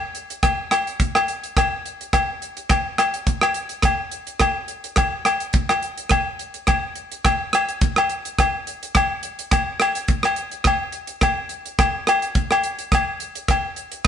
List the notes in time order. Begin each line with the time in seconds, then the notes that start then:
0.15 closed hi-hat
0.30 closed hi-hat
0.43 kick, cross-stick, closed hi-hat, low agogo
0.71 cross-stick, closed hi-hat, low agogo
0.87 closed hi-hat
1.00 kick, closed hi-hat
1.15 cross-stick, low agogo
1.28 closed hi-hat
1.44 closed hi-hat
1.57 kick, cross-stick, closed hi-hat, low agogo
1.86 closed hi-hat
2.01 closed hi-hat
2.13 kick, cross-stick, closed hi-hat, low agogo
2.42 closed hi-hat
2.57 closed hi-hat
2.69 kick, cross-stick, closed hi-hat, low agogo
2.98 cross-stick, closed hi-hat, low agogo
3.14 closed hi-hat
3.27 kick, closed hi-hat
3.41 cross-stick, low agogo
3.54 closed hi-hat
3.69 closed hi-hat
3.82 kick, cross-stick, closed hi-hat, low agogo
4.12 closed hi-hat
4.27 closed hi-hat
4.40 kick, cross-stick, closed hi-hat, low agogo
4.68 closed hi-hat
4.84 closed hi-hat
4.96 kick, cross-stick, closed hi-hat, low agogo
5.25 cross-stick, closed hi-hat, low agogo
5.40 closed hi-hat
5.53 kick, closed hi-hat
5.69 cross-stick, low agogo
5.83 closed hi-hat
5.98 closed hi-hat
6.09 kick, cross-stick, closed hi-hat, low agogo
6.39 closed hi-hat
6.54 closed hi-hat
6.67 kick, cross-stick, closed hi-hat, low agogo
6.96 closed hi-hat
7.12 closed hi-hat
7.25 kick, cross-stick, closed hi-hat, low agogo
7.53 cross-stick, closed hi-hat, low agogo
7.69 closed hi-hat
7.81 kick, closed hi-hat
7.96 cross-stick, low agogo
8.09 closed hi-hat
8.25 closed hi-hat
8.39 kick, cross-stick, closed hi-hat, low agogo
8.67 closed hi-hat
8.83 closed hi-hat
8.95 kick, cross-stick, closed hi-hat, low agogo
9.23 closed hi-hat
9.39 closed hi-hat
9.51 kick, cross-stick, closed hi-hat, low agogo
9.80 cross-stick, closed hi-hat, low agogo
9.95 closed hi-hat
10.08 kick, closed hi-hat
10.23 cross-stick, low agogo
10.36 closed hi-hat
10.51 closed hi-hat
10.64 kick, cross-stick, closed hi-hat, low agogo
10.92 closed hi-hat
11.07 closed hi-hat
11.21 kick, cross-stick, closed hi-hat, low agogo
11.49 closed hi-hat
11.66 closed hi-hat
11.79 kick, cross-stick, closed hi-hat, low agogo
12.07 cross-stick, closed hi-hat, low agogo
12.22 closed hi-hat
12.35 kick, closed hi-hat
12.51 cross-stick, low agogo
12.63 closed hi-hat
12.79 closed hi-hat
12.92 kick, cross-stick, closed hi-hat, low agogo
13.20 closed hi-hat
13.35 closed hi-hat
13.48 kick, cross-stick, closed hi-hat, low agogo
13.76 closed hi-hat
13.92 closed hi-hat